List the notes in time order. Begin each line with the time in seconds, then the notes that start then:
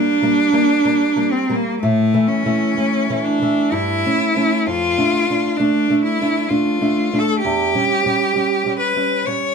Already playing: G3 A#3 D4
0.22 G3 A#3
0.53 G3 A#3
0.85 G3 A#3
1.16 G3 A#3
1.31 C4
1.49 G3 A#3
1.56 A#3
1.82 A2 A3
2.14 E3 A3
2.28 C#4
2.46 E3 A3
2.77 E3 A3
3.10 E3 A3
3.24 D4
3.42 E3 A3
3.72 G2 E4
4.06 A3 C#4
4.36 A3 C#4
4.66 F2 F4
4.97 A3 D4
5.30 A3 D4
5.57 A3 D4
5.90 A3 D4
6.04 E4
6.21 A3 D4
6.48 A3 D4 F4
6.81 A3 D4
7.13 A3 D4
7.19 A4
7.40 G4
7.45 E2
7.75 G3 C#4
8.06 G3 C#4
8.36 G3 C#4
8.66 G3 C#4
8.79 B4
8.97 G3 C#4
9.26 G3 C#4 C#5